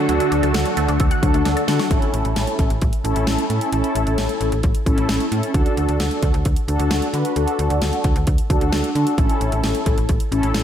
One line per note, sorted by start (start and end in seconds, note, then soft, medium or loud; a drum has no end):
0.00 1.87 D3 medium
0.00 1.87 A3 medium
0.00 1.87 F#4 medium
0.09 0.19 D2 loud
0.09 0.17 F#3 medium
0.09 0.88 D4 medium
0.09 0.88 F#4 medium
0.09 0.88 A4 loud
0.09 closed hi-hat medium
0.20 0.29 A3 medium
0.20 closed hi-hat medium
0.32 0.42 D2 loud
0.32 0.40 D4 medium
0.32 closed hi-hat medium
0.43 0.53 D2 medium
0.43 0.52 A4 loud
0.43 closed hi-hat soft
0.54 0.64 D2 loud
0.54 0.63 F#5 medium
0.54 snare loud
0.54 closed hi-hat medium
0.66 0.74 F#3 medium
0.66 closed hi-hat medium
0.77 0.87 D2 loud
0.77 0.86 A3 medium
0.77 closed hi-hat medium
0.88 0.98 D2 loud
0.88 0.97 D4 medium
0.88 closed hi-hat medium
1.00 1.10 D2 loud
1.00 1.08 A4 medium
1.00 kick medium
1.00 closed hi-hat medium
1.11 1.20 F#5 medium
1.11 closed hi-hat medium
1.23 1.33 D2 loud
1.23 1.31 F#3 medium
1.23 1.62 D4 medium
1.23 1.62 F#4 medium
1.23 1.62 A4 loud
1.23 kick medium
1.23 closed hi-hat medium
1.34 1.44 D2 loud
1.34 1.43 A3 medium
1.34 closed hi-hat medium
1.45 1.55 D2 loud
1.45 1.54 D4 medium
1.45 snare medium
1.45 closed hi-hat medium
1.57 1.65 A4 medium
1.57 closed hi-hat medium
1.68 1.78 D3 loud
1.68 1.88 D4 medium
1.68 1.88 F#4 medium
1.68 1.88 A4 medium
1.68 1.77 F#5 medium
1.68 snare medium
1.68 closed hi-hat medium
1.79 1.88 F#3 medium
1.79 snare medium
1.79 closed hi-hat medium
1.91 2.01 A1 loud
1.91 2.70 C#4 medium
1.91 2.70 E4 medium
1.91 2.70 A4 medium
1.91 kick loud
1.91 closed hi-hat medium
2.02 closed hi-hat medium
2.13 2.23 A1 medium
2.13 closed hi-hat medium
2.25 2.35 A1 medium
2.25 closed hi-hat soft
2.36 2.46 A1 loud
2.36 snare loud
2.36 closed hi-hat medium
2.47 closed hi-hat soft
2.59 2.69 A1 loud
2.59 kick medium
2.59 closed hi-hat medium
2.70 2.80 A1 medium
2.70 closed hi-hat medium
2.81 2.92 A1 loud
2.81 kick medium
2.81 closed hi-hat medium
2.93 closed hi-hat medium
3.04 3.14 A1 loud
3.04 3.44 C#4 medium
3.04 3.44 E4 medium
3.04 3.44 A4 medium
3.04 closed hi-hat medium
3.16 3.26 A1 loud
3.16 closed hi-hat medium
3.27 3.37 A1 loud
3.27 snare loud
3.27 closed hi-hat medium
3.39 closed hi-hat medium
3.50 3.60 A2 medium
3.50 3.70 C#4 medium
3.50 3.70 E4 medium
3.50 3.70 A4 medium
3.50 closed hi-hat medium
3.61 closed hi-hat medium
3.73 3.82 A1 loud
3.73 4.52 C#4 medium
3.73 4.52 E4 medium
3.73 4.52 A4 loud
3.73 closed hi-hat medium
3.84 closed hi-hat medium
3.95 4.05 A1 loud
3.95 closed hi-hat medium
4.07 4.17 A1 medium
4.07 closed hi-hat soft
4.18 snare loud
4.18 closed hi-hat medium
4.29 closed hi-hat soft
4.41 4.51 A1 loud
4.41 closed hi-hat medium
4.52 4.62 A1 loud
4.52 closed hi-hat soft
4.63 4.74 A1 loud
4.63 kick medium
4.63 closed hi-hat medium
4.75 closed hi-hat medium
4.86 4.96 A1 medium
4.86 5.26 C#4 medium
4.86 5.26 E4 medium
4.86 5.26 A4 medium
4.86 kick medium
4.86 closed hi-hat medium
4.98 5.07 A1 loud
4.98 closed hi-hat medium
5.09 5.19 A1 loud
5.09 snare loud
5.09 closed hi-hat medium
5.20 closed hi-hat medium
5.32 5.42 A2 loud
5.32 5.51 C#4 medium
5.32 5.51 E4 medium
5.32 5.51 A4 medium
5.32 closed hi-hat medium
5.43 closed hi-hat medium
5.54 5.64 D2 loud
5.54 6.34 D4 medium
5.54 6.34 F#4 medium
5.54 6.34 A4 medium
5.54 kick loud
5.54 closed hi-hat medium
5.66 closed hi-hat medium
5.77 5.87 D2 loud
5.77 closed hi-hat medium
5.88 5.98 D2 medium
5.88 closed hi-hat soft
6.00 6.10 D2 loud
6.00 snare loud
6.00 closed hi-hat medium
6.11 closed hi-hat soft
6.23 6.33 D2 loud
6.23 kick medium
6.23 closed hi-hat medium
6.34 6.44 D2 loud
6.34 closed hi-hat medium
6.45 6.55 D2 medium
6.45 kick medium
6.45 closed hi-hat medium
6.56 closed hi-hat medium
6.68 6.78 D2 medium
6.68 7.08 D4 medium
6.68 7.08 F#4 medium
6.68 7.08 A4 medium
6.68 closed hi-hat medium
6.79 6.89 D2 loud
6.79 closed hi-hat medium
6.91 7.01 D2 loud
6.91 snare loud
6.91 closed hi-hat medium
7.02 closed hi-hat medium
7.13 7.23 D3 loud
7.13 7.33 D4 medium
7.13 7.33 F#4 medium
7.13 7.33 B4 medium
7.13 closed hi-hat medium
7.25 closed hi-hat medium
7.36 7.46 D2 loud
7.36 8.15 D4 medium
7.36 8.15 F#4 medium
7.36 8.15 A4 medium
7.36 closed hi-hat medium
7.48 closed hi-hat soft
7.59 7.69 D2 loud
7.59 closed hi-hat medium
7.70 7.80 D2 medium
7.70 closed hi-hat soft
7.82 7.92 D2 loud
7.82 snare loud
7.82 closed hi-hat medium
7.93 closed hi-hat medium
8.04 8.14 D2 medium
8.04 kick medium
8.04 closed hi-hat medium
8.16 8.26 D2 loud
8.16 closed hi-hat medium
8.27 8.37 D2 loud
8.27 kick medium
8.27 closed hi-hat medium
8.38 closed hi-hat medium
8.50 8.60 D2 loud
8.50 8.89 D4 medium
8.50 8.89 F#4 medium
8.50 8.89 A4 loud
8.50 kick medium
8.50 closed hi-hat medium
8.61 8.71 D2 loud
8.61 closed hi-hat medium
8.72 8.83 D2 loud
8.72 snare loud
8.72 closed hi-hat medium
8.84 closed hi-hat medium
8.95 9.05 D3 loud
8.95 9.15 D4 medium
8.95 9.15 F#4 medium
8.95 9.15 A4 medium
8.95 closed hi-hat medium
9.07 closed hi-hat medium
9.18 9.28 A1 loud
9.18 9.97 C#4 medium
9.18 9.97 E4 medium
9.18 9.97 A4 medium
9.18 kick loud
9.18 closed hi-hat medium
9.30 closed hi-hat medium
9.41 9.51 A1 medium
9.41 closed hi-hat medium
9.52 9.62 A1 medium
9.52 closed hi-hat soft
9.64 9.73 A1 loud
9.64 snare loud
9.64 closed hi-hat medium
9.75 closed hi-hat medium
9.86 9.96 A1 loud
9.86 kick medium
9.86 closed hi-hat medium
9.98 10.08 A1 medium
9.98 closed hi-hat medium
10.09 10.19 A1 loud
10.09 kick medium
10.09 closed hi-hat medium
10.20 closed hi-hat medium
10.32 10.42 A1 loud
10.32 10.63 C#4 medium
10.32 10.63 E4 medium
10.32 10.63 A4 medium
10.32 closed hi-hat medium
10.43 10.53 A1 medium
10.43 closed hi-hat medium
10.54 10.63 A1 loud
10.54 snare loud
10.54 closed hi-hat medium